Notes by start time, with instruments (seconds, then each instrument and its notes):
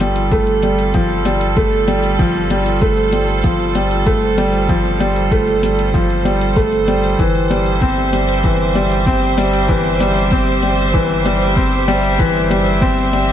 Already playing: analog synth bass G1, upright piano F3 A3, string section G3 F4 A4
0.00 upright piano G3, closed hi-hat
0.16 closed hi-hat
0.31 upright piano A3, kick, closed hi-hat
0.47 closed hi-hat
0.63 upright piano G3, closed hi-hat
0.78 closed hi-hat
0.94 upright piano F3, kick, closed hi-hat
1.10 closed hi-hat
1.25 upright piano G3, closed hi-hat
1.41 closed hi-hat
1.57 upright piano A3, kick, closed hi-hat
1.72 closed hi-hat
1.88 upright piano G3, closed hi-hat
2.03 closed hi-hat
2.19 upright piano F3, kick, closed hi-hat
2.35 closed hi-hat
2.50 upright piano G3, closed hi-hat
2.66 closed hi-hat
2.81 upright piano A3, kick, closed hi-hat
2.90 string section C5
2.97 closed hi-hat
3.12 upright piano G3, closed hi-hat
3.28 closed hi-hat
3.44 upright piano F3, kick, closed hi-hat
3.60 closed hi-hat
3.75 upright piano G3, closed hi-hat
3.91 closed hi-hat
4.06 upright piano A3, kick, closed hi-hat
4.22 closed hi-hat
4.38 upright piano G3, closed hi-hat
4.54 closed hi-hat
4.69 upright piano F3, kick, closed hi-hat
4.85 closed hi-hat
5.00 upright piano G3, closed hi-hat
5.16 closed hi-hat
5.31 upright piano A3, kick, closed hi-hat
5.48 closed hi-hat
5.63 upright piano G3, closed hi-hat
5.79 closed hi-hat
5.94 upright piano F3, kick, closed hi-hat
6.10 closed hi-hat
6.25 upright piano G3, closed hi-hat
6.41 closed hi-hat
6.56 upright piano A3, kick, closed hi-hat
6.72 closed hi-hat
6.88 upright piano G3, closed hi-hat
7.04 closed hi-hat
7.19 analog synth bass G1, upright piano E3, string section G3, kick, closed hi-hat
7.35 closed hi-hat
7.44 string section G4
7.50 upright piano G3, closed hi-hat
7.66 closed hi-hat
7.74 string section E5
7.81 upright piano C4, kick, closed hi-hat
7.97 closed hi-hat
8.13 upright piano G3, closed hi-hat
8.29 closed hi-hat
8.44 upright piano E3, kick, closed hi-hat
8.60 closed hi-hat
8.75 upright piano G3, closed hi-hat
8.91 closed hi-hat
9.06 upright piano C4, kick, closed hi-hat
9.22 closed hi-hat
9.38 upright piano G3, closed hi-hat
9.53 closed hi-hat
9.69 upright piano E3, kick, closed hi-hat
9.85 closed hi-hat
10.00 upright piano G3, closed hi-hat
10.16 closed hi-hat
10.31 upright piano C4, kick, closed hi-hat
10.47 closed hi-hat
10.63 upright piano G3, closed hi-hat
10.78 closed hi-hat
10.94 upright piano E3, kick, closed hi-hat
11.10 closed hi-hat
11.25 upright piano G3, closed hi-hat
11.41 closed hi-hat
11.57 upright piano C4, kick, closed hi-hat
11.73 closed hi-hat
11.88 upright piano G3, closed hi-hat
12.04 closed hi-hat
12.19 upright piano E3, kick, closed hi-hat
12.35 closed hi-hat
12.50 upright piano G3, closed hi-hat
12.66 closed hi-hat
12.82 upright piano C4, kick, closed hi-hat
12.98 closed hi-hat
13.13 upright piano G3, closed hi-hat
13.29 closed hi-hat